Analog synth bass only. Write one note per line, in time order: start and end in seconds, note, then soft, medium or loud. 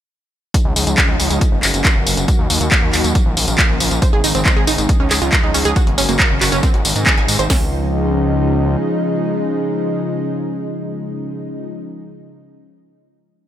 0.65 0.74 C#2 medium
0.76 0.85 C#2 loud
0.87 0.96 C#2 medium
1.09 1.18 C#2 medium
1.19 1.28 C#2 medium
1.30 1.39 C#2 loud
1.52 1.61 F#1 medium
1.63 1.72 F#1 loud
1.74 1.83 F#1 loud
1.95 2.04 F#1 medium
2.06 2.15 F#1 loud
2.17 2.26 F#1 loud
2.39 2.48 D#2 medium
2.50 2.59 D#2 loud
2.61 2.70 D#2 medium
2.83 2.91 D#2 medium
2.93 3.02 D#2 medium
3.04 3.13 D#2 loud
3.26 3.35 A#1 medium
3.37 3.46 A#1 loud
3.48 3.57 A#1 loud
3.69 3.78 A#1 medium
3.80 3.89 A#1 loud
3.91 4.00 A#1 medium
4.13 4.22 G#1 medium
4.24 4.33 G#1 loud
4.35 4.44 G#1 medium
4.57 4.65 G#1 medium
4.67 4.76 G#1 medium
4.78 4.87 G#1 loud
5.00 5.09 C#2 medium
5.11 5.20 C#2 loud
5.22 5.31 C#2 loud
5.43 5.52 C#2 medium
5.54 5.63 C#2 loud
5.65 5.74 C#2 medium
5.87 5.96 F#1 medium
5.98 6.07 F#1 loud
6.09 6.18 F#1 medium
6.30 6.39 F#1 medium
6.41 6.50 F#1 loud
6.52 6.61 F#1 medium
6.74 6.83 G#1 medium
6.85 6.94 G#1 loud
6.96 7.04 G#2 loud
7.17 7.26 G#1 medium
7.28 7.37 G#2 loud
7.39 7.48 G#1 loud
7.50 8.76 C#2 loud